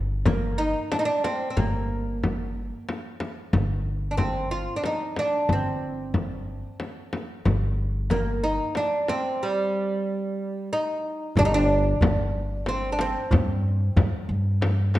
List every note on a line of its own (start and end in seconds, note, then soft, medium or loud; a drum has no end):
0.00 0.73 G1 medium
0.26 0.60 A#3 medium
0.26 frame drum medium
0.58 0.91 D#4 medium
0.92 0.99 D4 medium
0.92 frame drum medium
0.99 1.05 D#4 medium
1.05 1.24 D4 medium
1.24 1.49 C4 medium
1.24 frame drum medium
1.50 1.57 C4 soft
1.57 2.70 G1 medium
1.57 2.84 A#3 medium
1.57 frame drum medium
2.23 frame drum medium
2.89 frame drum medium
3.20 frame drum medium
3.53 4.66 G1 medium
3.53 frame drum medium
4.11 4.17 D4 soft
4.17 4.51 C4 medium
4.17 frame drum medium
4.51 4.76 F4 medium
4.76 4.84 D4 medium
4.84 5.18 D#4 medium
4.84 frame drum medium
5.16 5.51 D4 medium
5.16 frame drum medium
5.49 6.62 G1 medium
5.49 6.78 C4 medium
5.49 frame drum medium
6.14 frame drum medium
6.80 frame drum medium
7.13 frame drum medium
7.45 8.58 G1 medium
7.45 frame drum medium
8.10 8.44 A#3 medium
8.10 frame drum medium
8.44 8.77 D#4 medium
8.75 9.09 D4 medium
8.75 frame drum medium
9.08 9.42 C4 medium
9.08 frame drum medium
9.43 10.68 G3 medium
10.73 11.38 D#4 medium
11.36 11.93 G1 loud
11.36 11.45 D4 medium
11.36 tombak dum medium
11.36 frame drum medium
11.45 11.51 D#4 medium
11.54 12.68 D4 medium
11.85 tombak ka soft
12.01 13.13 G1 medium
12.01 tombak dum medium
12.01 frame drum medium
12.66 12.92 C4 medium
12.66 tombak tek medium
12.66 frame drum medium
12.92 12.99 D4 medium
12.99 14.91 C4 medium
12.99 tombak tek medium
12.99 frame drum medium
13.31 13.87 G2 medium
13.31 tombak dum loud
13.31 frame drum medium
13.64 tombak ka soft
13.81 tombak ka soft
13.96 14.10 G2 medium
13.96 tombak dum medium
13.96 frame drum medium
14.29 14.99 G2 medium
14.62 tombak tek medium
14.62 frame drum medium
14.94 tombak tek medium
14.94 frame drum medium